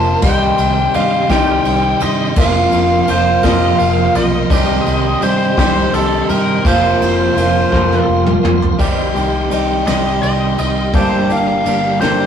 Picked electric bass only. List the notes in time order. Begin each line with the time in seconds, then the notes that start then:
Already playing: F1
0.23 C2
0.59 C2
0.95 G2
1.30 C2
1.66 C2
2.02 G2
2.37 F1
2.73 F1
3.09 F1
3.44 F2
3.80 F1
4.15 B1
4.50 C2
4.87 C2
5.22 G2
5.57 C2
5.94 C2
6.30 G2
6.65 F1
7.01 F1
7.36 F1
7.73 F2
8.08 F1
8.44 F1
8.80 C2
9.15 C2
9.50 C2
9.87 C2
10.23 C2
10.59 C2
10.94 G1
11.30 G1
11.66 G1
12.01 G1